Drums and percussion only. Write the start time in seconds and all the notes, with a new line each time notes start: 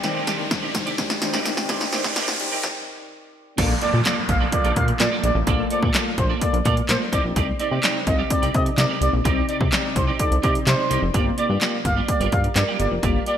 0.04 snare, closed hi-hat
0.27 snare, closed hi-hat
0.51 kick, snare, closed hi-hat
0.75 kick, snare, closed hi-hat
0.87 closed hi-hat
0.98 kick, snare, closed hi-hat
1.10 snare, closed hi-hat
1.22 snare, closed hi-hat
1.34 snare
1.45 snare, closed hi-hat
1.57 snare
1.69 kick, snare, closed hi-hat
1.81 snare
1.92 snare, closed hi-hat
2.04 kick, snare
2.16 snare, closed hi-hat
2.28 snare
2.40 closed hi-hat
2.63 kick, snare
3.58 kick, closed hi-hat, crash
3.81 closed hi-hat
4.05 snare, clap, closed hi-hat
4.29 kick, closed hi-hat
4.52 kick, closed hi-hat
4.65 closed hi-hat
4.76 kick, closed hi-hat
4.88 closed hi-hat
5.00 snare, clap, closed hi-hat
5.24 closed hi-hat
5.47 kick, closed hi-hat
5.70 closed hi-hat
5.83 kick
5.94 snare, clap, closed hi-hat
6.18 kick, closed hi-hat
6.41 kick, closed hi-hat
6.54 closed hi-hat
6.65 kick, closed hi-hat
6.77 closed hi-hat
6.89 snare, clap, closed hi-hat
7.13 kick, closed hi-hat
7.36 kick, closed hi-hat
7.60 closed hi-hat
7.83 snare, clap, closed hi-hat
8.07 kick, closed hi-hat
8.30 kick, closed hi-hat
8.43 closed hi-hat
8.54 kick, closed hi-hat
8.66 closed hi-hat
8.78 snare, clap, closed hi-hat
9.02 closed hi-hat
9.25 kick, closed hi-hat
9.49 closed hi-hat
9.61 kick
9.72 snare, clap, closed hi-hat
9.96 kick, closed hi-hat
10.19 kick, closed hi-hat
10.32 closed hi-hat
10.43 kick, closed hi-hat
10.55 closed hi-hat
10.67 snare, clap, closed hi-hat
10.91 closed hi-hat
11.14 kick, closed hi-hat
11.38 closed hi-hat
11.61 snare, clap, closed hi-hat
11.85 kick, closed hi-hat
12.08 kick, closed hi-hat
12.21 closed hi-hat
12.32 kick, closed hi-hat
12.44 closed hi-hat
12.56 snare, clap, closed hi-hat
12.80 closed hi-hat
13.03 kick, closed hi-hat
13.26 closed hi-hat